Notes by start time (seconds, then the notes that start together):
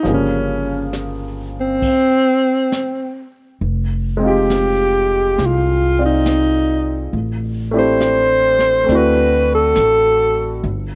0.03 G1 F3 G3 A#3, brush sweep, snare
0.08 C#3
0.14 C#4
0.93 snare, hi-hat pedal
1.60 C4
1.82 brush sweep, kick, crash
2.72 snare, hi-hat pedal
3.61 F1, brush sweep
4.17 G#3 C4
4.23 D#4 F4
4.27 G4
4.50 snare, hi-hat pedal
5.38 C2, brush sweep, snare
5.45 F4
5.98 C4 F4 D5
6.05 D#4
6.26 snare, hi-hat pedal
7.13 A1, brush sweep
7.71 A3 C4 D4 E4
7.77 G4 C5
8.01 snare, hi-hat pedal
8.59 snare
8.84 A3 C4
8.88 D2 D4 E4, brush sweep, snare
8.95 F#4 B4
9.55 A4
9.76 A1, snare, hi-hat pedal
10.63 G1, brush sweep